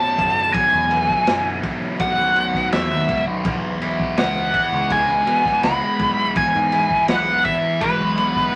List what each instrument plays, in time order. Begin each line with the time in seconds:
Already playing: distorted electric guitar B1 F#2 B2, lead electric guitar A5
0.18 picked electric bass F#1, distorted electric guitar B1, kick, ride
0.53 distorted electric guitar B1, lead electric guitar G#5, kick, ride
0.73 picked electric bass E2
0.91 distorted electric guitar E3, ride
1.09 kick
1.27 picked electric bass F#1, distorted electric guitar B2, snare, ride
1.63 distorted electric guitar B1, kick, ride
1.99 distorted electric guitar F#2, lead electric guitar F#5, kick, ride
2.18 picked electric bass B1
2.36 distorted electric guitar B2, ride
2.54 kick, snare
2.72 picked electric bass E2, distorted electric guitar F#2, lead electric guitar E5, snare, ride
2.91 picked electric bass D#2
3.09 distorted electric guitar B1, picked electric bass C#2, kick, ride
3.27 picked electric bass B1
3.45 picked electric bass B1, distorted electric guitar E2, kick, ride
3.82 picked electric bass B1, distorted electric guitar E4, ride
3.99 kick
4.17 picked electric bass C#2, distorted electric guitar B3, lead electric guitar F#5, snare, ride
4.54 distorted electric guitar E3, kick, ride
4.72 picked electric bass C#2
4.90 distorted electric guitar G#3, lead electric guitar G#5, kick, ride
5.27 picked electric bass B2, distorted electric guitar B3, ride
5.45 kick, snare
5.63 picked electric bass C#2, distorted electric guitar G#3, lead electric guitar B5, snare, ride
5.99 picked electric bass B1, distorted electric guitar E3, kick, ride
6.36 distorted electric guitar E2, lead electric guitar G#5, kick, ride
6.55 picked electric bass G#2
6.72 distorted electric guitar E4, snare, ride
6.90 kick
7.08 picked electric bass B1, distorted electric guitar B3, lead electric guitar F#5, snare, ride
7.45 distorted electric guitar E3, lead electric guitar E5, kick, ride
7.81 distorted electric guitar G#3, lead electric guitar B4, kick, ride
8.00 picked electric bass B1
8.18 distorted electric guitar B3, ride
8.36 kick